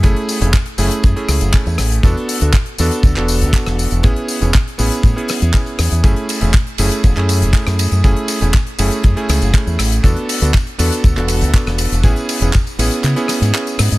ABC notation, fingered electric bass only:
X:1
M:4/4
L:1/16
Q:1/4=120
K:F#m
V:1 name="Fingered electric bass" clef=bass
F,,, z2 E,,, z2 F,,, z F,, z C,, F,,, z E,, A,,,2 | E,, z2 D,, z2 E,, z D,, E,,,2 D,, z E,,,2 E,,, | A,,, z2 E,,, z2 A,,, z A,, z2 E,, z2 E,, E,, | F,,, z2 E,,, z2 F,,, z E,,, F,,2 E,,, z F,,2 F,, |
F,,, z2 E,,, z2 F,,, z F,, z C,, F,,, z E,, A,,,2 | E,, z2 D,, z2 E,, z D,, E,,,2 D,, z E,,,2 E,,, | A,,, z2 E,,, z2 A,,, z C, z2 G,, z2 G,, G,, |]